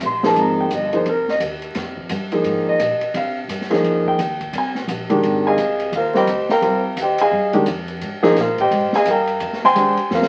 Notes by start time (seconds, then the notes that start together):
0.01 A#1, hi-hat pedal, ride
0.06 C6
0.23 F3 A#3 D#4 G#4 A5, snare
0.36 G#1 A#5, ride
0.61 G5
0.71 G1, hi-hat pedal, ride
0.75 D#5
0.93 F3 A#3 D#4 G#4 C5, ride
1.06 C2 A#4, ride
1.28 D#5, snare
1.40 D#2, hi-hat pedal, ride
1.62 ride
1.75 F2, snare, ride
1.97 kick
2.09 G2, hi-hat pedal, ride
2.32 F3 A#3 D#4 G#4, ride
2.44 G#2, ride
2.69 D#5
2.79 A#2, hi-hat pedal, ride
3.00 muted upright bass stroke, ride
3.14 C3 F5, ride
3.48 G2, hi-hat pedal, ride
3.61 snare
3.70 F3 A#3 D#4 G#4, snare, ride
3.83 F2, ride
4.06 G5, kick
4.19 D#2, hi-hat pedal, ride
4.41 kick, ride
4.53 C2, ride
4.58 G#5
4.75 snare
4.87 A#1, hi-hat pedal, ride
5.10 D#3 G#3 D4 G4, ride
5.23 G#1, ride
5.47 G#4 D#5 F5 G#5
5.57 C2, hi-hat pedal, ride
5.80 ride
5.92 D#2 F5, ride
5.96 F4 A#4 C5
6.14 G3 C4 F4 G4 A#4 C5 D#5 G5, snare
6.27 D2, hi-hat pedal, ride
6.49 A#4 F5 G5 A#5, snare
6.62 C2 G3 C4 F4 A#4, ride
6.96 D#2, hi-hat pedal, ride
7.02 G4 C5 D#5 G5
7.18 G#4 D#5 F5 G#5, ride
7.31 G2
7.53 D#3 G#3 D4 G4, ride
7.66 F2, hi-hat pedal, ride
7.88 ride
8.01 G#2, ride
8.23 F3 A#3 D#4 G#4, snare
8.36 A#2, snare, hi-hat pedal, ride
8.41 F4 A#4 C5 F5
8.58 G4 C5 D#5 G5, kick, ride
8.71 G#2, ride
8.93 G#4 D#5 F5 G#5, muted upright bass stroke, snare
9.05 G2, hi-hat pedal, ride
9.10 A#4 F5 G5 A#5
9.27 ride
9.40 F2, ride
9.53 snare
9.64 C5 G5 G#5 C6, snare
9.75 D#2 G#3 D4 G4 C5, hi-hat pedal, ride
9.97 muted upright bass stroke, ride
10.10 F2, snare
10.14 F4 A#4 C5 F5
10.22 snare